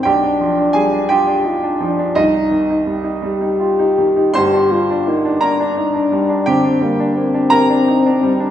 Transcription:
<<
  \new Staff \with { instrumentName = "French horn" } { \time 12/8 \key g \phrygian \tempo 4. = 56 d'4. g'8 f'8 d'8 ees'4 r8 g'4. | g'8 f'8 ees'8 d'4. c'8 bes8 c'2 | }
  \new Staff \with { instrumentName = "Grand piano" } { \time 12/8 \key g \phrygian << { <g' g''>4 <aes' aes''>8 <g' g''>4. <ees' ees''>2. | <c'' c'''>4. <bes' bes''>4. <g' g''>4. <bes' bes''>4. | } \\ { b,,16 d'16 f16 d'16 g16 d'16 f'16 d'16 ees'16 d'16 f16 d'16 c,16 ees'16 ees16 ees'16 g16 ees'16 g16 ees'16 f'16 ees'16 ees16 ees'16 | <g,, g,>16 d'16 g16 d'16 bes16 d'16 bes16 d'16 ees'16 d'16 g16 d'16 d16 d'16 g16 d'16 bes16 d'16 bes16 d'16 ees'16 d'16 g16 d'16 | } >> }
>>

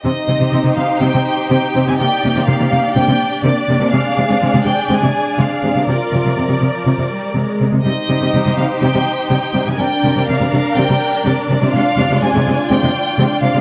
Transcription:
<<
  \new Staff \with { instrumentName = "Violin section" } { \time 4/4 \key c \minor \tempo 4 = 124 ees''4. f''8 g''4 g''8. aes''16 | g''4 f''4 g''4 d''4 | f''4. g''8 aes''4 f''4 | d''2. r4 |
ees''4. f''8 g''4 g''8. aes''16 | g''4 f''4 g''4 d''4 | f''4 aes''4 g''4. f''8 | }
  \new Staff \with { instrumentName = "Violin section" } { \time 4/4 \key c \minor << { c''1 | d''1~ | d''1 | d''2.~ d''8 r8 |
c''1 | d''1~ | d''1 | } \\ { g'1~ | g'1 | aes'1 | bes'2.~ bes'8 r8 |
g'1 | bes'1 | f'1 | } >> }
  \new Staff \with { instrumentName = "Viola section" } { \clef bass \time 4/4 \key c \minor << { ees'1~ | ees'2 d'2~ | d'1 | f'4 f4. g8 aes4 |
ees'1 | d'1~ | d'1 | } \\ { c'16 r16 c'16 c'16 c'16 c'16 c'16 r16 c'16 c'16 r8 c'16 r16 c'16 c'16 | bes16 r16 bes16 bes16 bes16 bes16 bes16 r16 bes16 bes16 r8 bes16 r16 bes16 bes16 | aes16 r16 aes16 aes16 aes16 aes16 aes16 r16 aes16 aes16 r8 aes16 r16 aes16 aes16 | f16 r16 f16 f16 r2. |
g16 r16 g16 g16 g16 g16 g16 r16 g16 g16 r8 g16 r16 g16 g16 | g16 r16 g16 g16 g16 g16 g16 r16 g16 g16 r8 g16 r16 g16 g16 | aes16 r16 aes16 aes16 aes16 aes16 aes16 r16 aes16 aes16 r8 aes16 r16 aes16 aes16 | } >> }
  \new Staff \with { instrumentName = "Cello section" } { \clef bass \time 4/4 \key c \minor c16 r16 c16 c16 c16 c16 c16 r16 c16 c16 r8 c16 r16 c16 c16 | c16 r16 c16 c16 c16 c16 c16 r16 c16 c16 r8 c16 r16 c16 c16 | c16 r16 c16 c16 c16 c16 c16 r16 c16 c16 r8 c16 r16 c16 c16 | c16 r16 c16 c16 c16 c16 c16 r16 c16 c16 r8 c16 r16 c16 c16 |
c16 r16 c16 c16 c16 c16 c16 r16 c16 c16 r8 c16 r16 c16 c16 | c16 r16 c16 c16 c16 c16 c16 r16 c16 c16 r8 c16 r16 c16 c16 | c16 r16 c16 c16 c16 c16 c16 r16 c16 c16 r8 c16 r16 c16 c16 | }
>>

